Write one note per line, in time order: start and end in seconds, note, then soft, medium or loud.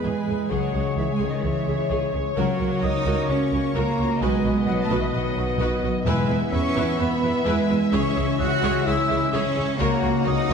0.00 0.46 E3 medium
0.00 0.52 E3 medium
0.00 0.34 G#3 soft
0.00 2.32 G#3 medium
0.00 0.49 G#3 medium
0.00 0.52 B3 soft
0.00 2.39 E4 soft
0.00 0.18 G#4 soft
0.00 2.33 G#4 medium
0.00 0.25 G#4 medium
0.00 0.46 B4 medium
0.00 0.47 B4 medium
0.00 0.52 B4 medium
0.00 0.49 G#5 medium
0.04 0.13 E2 medium
0.04 0.52 B4 soft
0.04 0.51 G#5 medium
0.19 0.81 G#4 soft
0.28 0.36 E2 soft
0.28 0.36 G#4 soft
0.35 0.65 G#3 soft
0.49 0.60 C#2 medium
0.49 4.17 C#3 medium
0.49 2.35 C#3 medium
0.49 0.97 F#3 medium
0.49 0.72 G#4 medium
0.49 4.20 C#5 medium
0.49 4.21 C#5 medium
0.49 4.18 C#5 medium
0.49 0.97 F#5 medium
0.49 0.99 F#5 medium
0.66 1.27 G#3 soft
0.74 0.82 C#2 soft
0.74 0.82 G#4 soft
0.82 1.12 G#4 soft
0.97 1.05 C#2 medium
0.97 1.03 E3 medium
0.97 1.05 G#4 medium
0.97 1.89 C#5 soft
0.97 1.12 E5 medium
0.97 1.15 E5 medium
1.12 1.28 G#3 medium
1.12 1.73 G#4 soft
1.12 1.28 G#5 medium
1.20 1.28 C#2 medium
1.20 1.42 G#4 medium
1.27 1.43 D#3 medium
1.27 1.58 G#3 soft
1.27 1.35 D#5 medium
1.42 1.52 C#2 medium
1.42 2.13 E3 medium
1.42 3.27 C#4 soft
1.42 1.52 G#4 medium
1.42 2.12 E5 medium
1.59 2.20 G#3 soft
1.67 1.75 C#2 soft
1.67 1.75 G#4 medium
1.75 2.05 G#4 soft
1.90 1.99 C#2 medium
1.90 2.12 G#4 medium
1.90 2.81 C#5 medium
2.06 2.39 G#4 soft
2.14 2.22 C#2 soft
2.14 2.22 G#4 medium
2.21 2.38 G#3 soft
2.36 2.45 C#2 medium
2.36 4.23 C#3 medium
2.36 2.79 F#3 medium
2.36 4.17 A#3 medium
2.36 6.02 F#4 medium
2.36 2.58 F#4 medium
2.36 4.17 A#4 medium
2.36 2.58 A#4 medium
2.36 2.79 F#5 medium
2.36 2.80 F#5 medium
2.60 2.69 C#2 medium
2.60 2.68 F#4 medium
2.60 2.68 A#4 soft
2.67 2.96 F#4 soft
2.82 2.91 C#2 medium
2.82 3.29 D#4 medium
2.82 2.91 F#4 medium
2.82 2.91 A#4 medium
2.82 3.73 C#5 soft
2.82 3.28 D#6 medium
2.82 3.30 D#6 medium
2.97 3.58 F#4 soft
3.05 3.14 C#2 medium
3.05 3.27 F#4 medium
3.05 3.27 A#4 medium
3.28 3.37 C#2 medium
3.28 4.23 C#4 medium
3.28 3.75 C#4 medium
3.28 3.37 F#4 medium
3.28 3.37 A#4 medium
3.28 3.74 C#6 medium
3.43 4.04 A#3 soft
3.52 3.60 C#2 soft
3.52 3.60 F#4 medium
3.52 3.60 A#4 medium
3.59 3.89 F#4 soft
3.74 3.83 C#2 medium
3.74 4.20 A#3 medium
3.74 3.97 F#4 medium
3.74 3.97 A#4 medium
3.74 4.23 C#5 medium
3.74 4.21 A#5 medium
3.74 4.23 A#5 medium
3.90 4.51 F#4 medium
3.98 4.07 C#2 medium
3.98 4.06 F#4 medium
3.98 4.06 A#4 medium
4.05 4.23 A#3 soft
4.20 4.29 B1 medium
4.20 6.08 B2 medium
4.20 6.02 D#3 medium
4.20 4.67 G#3 medium
4.20 7.75 B3 medium
4.20 4.43 F#4 medium
4.20 7.88 B4 medium
4.20 5.89 B4 medium
4.20 4.43 B4 medium
4.20 6.02 D#5 medium
4.20 4.66 G#5 medium
4.20 4.70 G#5 medium
4.37 4.97 B3 soft
4.44 4.52 B1 medium
4.44 4.53 F#4 medium
4.44 4.53 B4 medium
4.52 4.82 F#4 medium
4.66 4.75 B1 medium
4.66 4.83 F#3 medium
4.66 4.75 F#4 medium
4.66 4.75 B4 medium
4.66 5.60 D#5 medium
4.66 4.72 F#5 medium
4.66 4.83 F#5 medium
4.81 4.98 A3 medium
4.81 5.44 F#4 soft
4.81 4.97 A5 medium
4.81 4.98 A5 medium
4.90 4.98 B1 medium
4.90 5.11 F#4 medium
4.90 5.12 B4 medium
4.98 5.04 E3 medium
4.98 5.28 B3 medium
4.98 5.13 E5 medium
4.98 5.06 E5 medium
5.13 5.21 B1 medium
5.13 5.81 F#3 medium
5.13 6.08 F#3 medium
5.13 5.21 F#4 medium
5.13 5.21 B4 medium
5.13 5.81 F#5 medium
5.13 5.82 F#5 medium
5.29 5.90 B3 medium
5.36 5.44 B1 medium
5.36 5.45 F#4 medium
5.36 5.45 B4 medium
5.45 5.74 F#4 medium
5.59 5.67 B1 medium
5.59 5.81 F#4 medium
5.59 5.81 B4 medium
5.59 6.08 D#5 medium
5.76 6.08 F#4 medium
5.83 5.91 B1 medium
5.83 5.91 F#4 medium
5.83 5.91 B4 medium
5.91 7.94 B3 medium
6.05 6.71 E2 medium
6.05 6.13 E2 medium
6.05 9.79 E3 medium
6.05 7.94 E3 medium
6.05 6.49 G#3 loud
6.05 9.62 E4 medium
6.05 6.28 E4 medium
6.05 6.17 B4 medium
6.05 6.28 B4 loud
6.05 9.75 E5 medium
6.05 6.17 E5 medium
6.05 6.49 G#5 medium
6.05 6.50 G#5 medium
6.22 6.83 E4 medium
6.29 6.37 E2 medium
6.29 6.37 E4 medium
6.29 6.37 B4 medium
6.29 6.41 B4 medium
6.29 6.40 E5 medium
6.37 6.68 B4 medium
6.52 6.61 E2 medium
6.52 6.98 C#4 loud
6.52 6.61 E4 medium
6.52 7.45 G#4 medium
6.52 6.62 B4 medium
6.52 6.60 B4 medium
6.52 6.63 E5 medium
6.52 6.98 C#6 loud
6.69 7.29 B4 medium
6.75 6.84 E2 medium
6.75 6.97 E4 medium
6.75 6.85 B4 medium
6.75 6.97 B4 medium
6.75 6.87 E5 medium
6.84 7.14 E4 medium
6.98 7.07 E2 medium
6.98 8.07 G#3 medium
6.98 7.45 B3 medium
6.98 7.07 E4 medium
6.98 7.09 B4 medium
6.98 7.07 B4 medium
6.98 7.09 E5 medium
6.98 7.46 B5 medium
6.98 7.45 B5 medium
7.15 7.76 E4 medium
7.21 7.31 E2 medium
7.21 7.31 E4 medium
7.21 7.32 B4 medium
7.21 7.31 B4 medium
7.21 7.33 E5 medium
7.45 7.54 E2 medium
7.45 7.91 G#3 loud
7.45 7.67 E4 medium
7.45 9.81 G#4 medium
7.45 7.56 B4 medium
7.45 7.67 B4 medium
7.45 7.57 E5 medium
7.45 7.92 G#5 medium
7.45 7.91 G#5 medium
7.62 7.94 B4 medium
7.69 7.78 E2 medium
7.69 7.77 E4 medium
7.69 7.77 B4 medium
7.69 7.80 B4 medium
7.69 7.80 E5 medium
7.77 8.22 E4 medium
7.92 8.01 C#2 medium
7.92 9.78 C#3 medium
7.92 9.75 G#3 medium
7.92 8.39 C#4 loud
7.92 8.02 G#4 medium
7.92 8.14 G#4 medium
7.92 9.62 C#5 medium
7.92 8.14 C#5 medium
7.92 8.02 E5 medium
7.92 8.38 C#6 medium
8.08 8.69 G#3 medium
8.16 8.25 C#2 medium
8.16 8.24 G#4 medium
8.16 8.26 G#4 medium
8.16 8.24 C#5 medium
8.16 8.26 E5 medium
8.23 8.53 E4 medium
8.39 8.48 C#2 medium
8.39 8.85 F#4 loud
8.39 8.47 G#4 medium
8.39 8.50 G#4 medium
8.39 9.30 C#5 medium
8.39 8.47 C#5 medium
8.39 8.50 E5 medium
8.39 8.88 F#6 loud
8.39 8.85 F#6 loud
8.54 9.15 E4 medium
8.63 8.71 C#2 medium
8.63 8.73 G#4 medium
8.63 8.84 G#4 medium
8.63 8.85 C#5 medium
8.63 8.74 E5 medium
8.70 9.00 G#3 medium
8.86 8.95 C#2 medium
8.86 10.54 C#4 medium
8.86 9.33 E4 medium
8.86 8.96 G#4 medium
8.86 8.94 G#4 medium
8.86 8.94 C#5 medium
8.86 8.97 E5 medium
8.86 9.34 E6 medium
8.86 9.32 E6 medium
9.01 9.62 G#3 medium
9.09 9.18 C#2 medium
9.09 9.20 G#4 medium
9.09 9.18 G#4 medium
9.09 9.17 C#5 medium
9.09 9.20 E5 medium
9.16 9.46 E4 medium
9.32 9.41 C#2 medium
9.32 9.78 C#4 loud
9.32 9.54 G#4 medium
9.32 9.43 G#4 medium
9.32 10.25 C#5 medium
9.32 9.54 C#5 medium
9.32 9.42 E5 medium
9.32 9.79 C#6 medium
9.32 9.78 C#6 medium
9.47 9.81 E4 medium
9.56 9.65 C#2 medium
9.56 9.64 G#4 medium
9.56 9.67 G#4 medium
9.56 9.64 C#5 medium
9.56 9.66 E5 medium
9.63 9.81 G#3 medium
9.79 9.88 C#2 medium
9.79 10.54 C#3 medium
9.79 10.54 A#3 medium
9.79 10.26 A#3 loud
9.79 10.54 F#4 medium
9.79 9.90 F#4 medium
9.79 10.01 A#4 medium
9.79 9.89 C#5 medium
9.79 10.01 C#5 medium
9.79 10.54 C#5 medium
9.79 10.54 F#5 medium
9.79 10.25 A#5 medium
9.79 10.26 A#5 medium
10.02 10.11 C#2 medium
10.02 10.13 F#4 medium
10.02 10.10 A#4 medium
10.02 10.10 C#5 medium
10.02 10.13 C#5 medium
10.10 10.40 F#4 medium
10.25 10.34 C#2 medium
10.25 10.54 D#4 loud
10.25 10.35 F#4 medium
10.25 10.33 A#4 medium
10.25 10.33 C#5 medium
10.25 10.36 C#5 medium
10.25 10.54 C#5 medium
10.25 10.54 D#6 medium
10.25 10.54 D#6 loud
10.41 10.54 F#4 soft
10.47 10.54 C#2 medium
10.47 10.54 F#4 medium
10.47 10.54 A#4 medium
10.47 10.54 C#5 medium